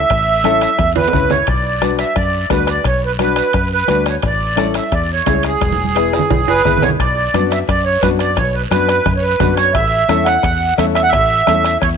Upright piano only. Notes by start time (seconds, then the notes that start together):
0.44 C#4 E4 A4
1.13 C#4 E4 B4
1.81 D4 F#4 B4
2.50 D4 F#4 B4
3.20 D4 F#4 B4
3.88 D4 F#4 B4
4.56 C#4 E4 A4
5.26 C#4 E4 G#4
5.95 B3 E4 G#4
6.65 B3 E4 G#4
7.34 B3 D4 F#4
8.02 B3 D4 F#4
8.71 B3 D4 F#4
9.39 B3 D4 F#4
10.09 C#4 E4 A4
10.78 C#4 E4 A4
11.47 C#4 E4 A4